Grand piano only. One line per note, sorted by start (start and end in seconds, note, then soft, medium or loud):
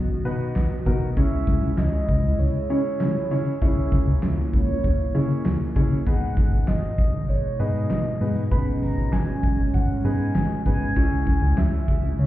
0.25 0.65 B3 medium
0.25 0.65 D#4 medium
0.25 0.65 F#4 medium
0.25 0.65 B4 loud
0.86 1.06 B3 medium
0.86 1.06 D#4 medium
0.86 1.06 F#4 medium
0.86 1.06 A#4 medium
1.17 1.97 C#4 medium
1.17 1.97 E4 medium
1.17 1.97 G#4 medium
1.17 1.97 C#5 medium
2.70 3.10 C#4 medium
2.70 3.10 E4 medium
2.70 3.10 G#4 medium
2.70 3.10 C#5 medium
3.31 3.51 C#4 medium
3.31 3.51 E4 medium
3.31 3.51 G#4 medium
3.31 3.51 C#5 loud
3.62 4.42 C#4 medium
3.62 4.42 E4 medium
3.62 4.42 G#4 medium
3.62 4.42 C#5 medium
5.15 5.55 C#4 medium
5.15 5.55 E4 medium
5.15 5.55 G#4 medium
5.15 5.55 C#5 medium
5.76 5.96 C#4 medium
5.76 5.96 E4 medium
5.76 5.96 G#4 medium
5.76 5.96 C#5 medium
6.06 6.86 B3 medium
6.06 6.86 D#4 medium
6.06 6.86 G#4 medium
6.06 6.86 B4 medium
7.60 8.00 B3 medium
7.60 8.00 D#4 medium
7.60 8.00 G#4 medium
7.60 8.00 B4 medium
8.21 8.41 B3 medium
8.21 8.41 D#4 medium
8.21 8.41 G#4 medium
8.21 8.41 B4 medium
8.52 9.31 B3 medium
8.52 9.31 D#4 medium
8.52 9.31 G#4 medium
8.52 9.31 B4 medium
10.05 10.45 B3 medium
10.05 10.45 D#4 medium
10.05 10.45 G#4 medium
10.05 10.45 B4 medium
10.66 10.86 B3 medium
10.66 10.86 D#4 medium
10.66 10.86 G#4 medium
10.66 10.86 B4 medium
10.96 11.76 C#4 medium
10.96 11.76 E4 medium
10.96 11.76 G#4 medium
10.96 11.76 C#5 medium